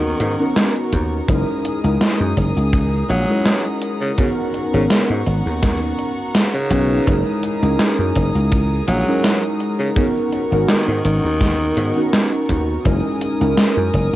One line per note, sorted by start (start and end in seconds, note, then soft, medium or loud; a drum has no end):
0.00 0.13 D#2 medium
0.00 0.50 D#3 loud
0.00 0.38 B3 medium
0.00 1.26 B3 medium
0.00 0.39 C#4 medium
0.00 0.40 D#4 medium
0.00 0.41 F#4 medium
0.00 0.41 A#4 medium
0.00 1.26 F#5 medium
0.00 1.26 A#5 medium
0.00 1.26 C#6 medium
0.20 0.34 G#2 medium
0.20 closed hi-hat medium
0.38 1.24 B3 medium
0.38 1.24 C#4 medium
0.38 1.25 D#4 medium
0.38 1.25 F#4 medium
0.38 1.26 A#4 medium
0.56 snare loud
0.56 closed hi-hat medium
0.76 closed hi-hat soft
0.93 1.20 D#2 medium
0.93 kick medium
0.93 closed hi-hat medium
1.28 1.43 F#1 loud
1.28 1.79 G#3 medium
1.28 1.79 C#4 medium
1.28 1.80 D#4 medium
1.28 1.80 E4 medium
1.28 4.15 G#4 medium
1.28 1.80 A#4 medium
1.28 12.81 A#5 medium
1.28 4.15 D#6 medium
1.28 kick loud
1.28 closed hi-hat medium
1.65 closed hi-hat medium
1.83 1.97 C#2 loud
1.83 3.24 G#3 medium
1.83 3.25 C#4 medium
1.83 3.25 D#4 medium
1.83 3.25 E4 medium
1.83 3.26 A#4 medium
2.01 snare loud
2.01 closed hi-hat medium
2.20 2.33 F#2 loud
2.37 2.51 F#1 loud
2.37 kick medium
2.37 closed hi-hat medium
2.57 3.02 C#2 medium
2.73 kick loud
2.73 closed hi-hat medium
3.09 3.24 A#1 medium
3.09 3.65 F#3 loud
3.09 closed hi-hat medium
3.28 4.13 G#3 medium
3.28 4.14 C#4 medium
3.28 4.14 D#4 medium
3.28 4.14 E4 medium
3.28 4.15 A#4 medium
3.46 snare loud
3.46 closed hi-hat medium
3.65 closed hi-hat soft
3.82 closed hi-hat medium
4.01 4.12 C#3 medium
4.17 4.31 C#3 medium
4.17 4.69 B3 medium
4.17 7.04 B3 medium
4.17 4.69 C#4 medium
4.17 4.69 D#4 medium
4.17 4.69 F#4 medium
4.17 4.69 A#4 medium
4.17 7.04 F#5 medium
4.17 7.04 C#6 medium
4.17 kick loud
4.17 closed hi-hat medium
4.54 closed hi-hat medium
4.72 4.86 G#1 loud
4.72 4.84 C#3 medium
4.72 6.14 B3 medium
4.72 6.14 C#4 medium
4.72 6.14 D#4 medium
4.72 6.15 F#4 medium
4.72 6.15 A#4 medium
4.90 5.03 C#3 medium
4.90 snare loud
4.90 closed hi-hat medium
5.10 5.22 G#2 medium
5.26 5.41 G#1 loud
5.26 closed hi-hat medium
5.46 5.92 D#2 medium
5.62 kick loud
5.62 snare medium
5.62 closed hi-hat medium
5.99 closed hi-hat medium
6.35 snare loud
6.35 closed hi-hat medium
6.54 7.15 C#3 loud
6.54 closed hi-hat soft
6.70 6.98 B1 medium
6.70 6.81 B3 medium
6.70 6.81 C#4 medium
6.70 6.81 D#4 medium
6.70 6.82 F#4 medium
6.70 6.82 B4 medium
6.70 kick medium
6.70 closed hi-hat medium
7.07 7.21 F#1 loud
7.07 7.58 G#3 medium
7.07 7.58 C#4 medium
7.07 7.58 D#4 medium
7.07 7.58 E4 medium
7.07 9.93 G#4 medium
7.07 7.58 A#4 medium
7.07 9.93 D#6 medium
7.07 kick loud
7.07 closed hi-hat medium
7.43 closed hi-hat medium
7.61 7.75 C#2 loud
7.61 9.03 G#3 medium
7.61 9.03 C#4 medium
7.61 9.03 D#4 medium
7.61 9.04 E4 medium
7.61 9.04 A#4 medium
7.79 snare loud
7.79 closed hi-hat medium
7.99 8.11 F#2 medium
8.15 8.30 F#1 loud
8.15 kick medium
8.15 closed hi-hat medium
8.35 8.81 C#2 medium
8.52 kick loud
8.52 closed hi-hat medium
8.88 9.02 A#1 medium
8.88 9.43 F#3 loud
8.88 closed hi-hat medium
9.06 9.91 G#3 medium
9.06 9.92 C#4 medium
9.06 9.92 D#4 medium
9.06 9.93 E4 medium
9.06 9.93 A#4 medium
9.24 snare loud
9.24 closed hi-hat medium
9.43 closed hi-hat soft
9.60 closed hi-hat medium
9.79 9.90 C#3 medium
9.96 10.09 C#3 medium
9.96 10.47 B3 medium
9.96 12.83 B3 medium
9.96 10.47 C#4 medium
9.96 10.47 D#4 medium
9.96 10.47 F#4 medium
9.96 10.48 A#4 medium
9.96 12.82 F#5 medium
9.96 12.82 C#6 medium
9.96 kick loud
9.96 closed hi-hat medium
10.32 closed hi-hat medium
10.51 10.64 G#1 medium
10.51 11.92 B3 medium
10.51 11.92 C#4 medium
10.51 11.93 D#4 medium
10.51 11.93 F#4 medium
10.51 11.93 A#4 medium
10.68 11.01 D#3 medium
10.68 snare loud
10.68 closed hi-hat medium
10.88 11.00 G#2 medium
11.05 11.19 G#1 loud
11.05 12.06 D#3 loud
11.05 closed hi-hat medium
11.24 11.70 D#2 medium
11.41 kick loud
11.41 snare medium
11.41 closed hi-hat medium
11.77 11.91 G#2 medium
11.77 closed hi-hat medium
11.95 12.81 B3 medium
11.95 12.81 C#4 medium
11.95 12.81 D#4 medium
11.95 12.82 F#4 medium
11.95 12.82 A#4 medium
12.13 snare loud
12.13 closed hi-hat medium
12.32 closed hi-hat soft
12.49 12.76 D#2 medium
12.49 kick medium
12.49 closed hi-hat medium
12.85 13.00 F#1 loud
12.85 13.36 G#3 medium
12.85 13.36 C#4 medium
12.85 13.36 D#4 medium
12.85 13.37 E4 medium
12.85 14.16 A#4 medium
12.85 13.37 A#4 medium
12.85 14.16 G#5 medium
12.85 14.16 D#6 medium
12.85 kick loud
12.85 closed hi-hat medium
13.21 closed hi-hat medium
13.39 13.53 C#2 medium
13.39 14.16 G#3 medium
13.39 14.16 C#4 medium
13.39 14.16 D#4 medium
13.39 14.16 E4 medium
13.39 14.16 A#4 medium
13.58 snare loud
13.58 closed hi-hat medium
13.77 13.89 F#2 medium
13.94 14.08 F#1 loud
13.94 kick medium
13.94 closed hi-hat medium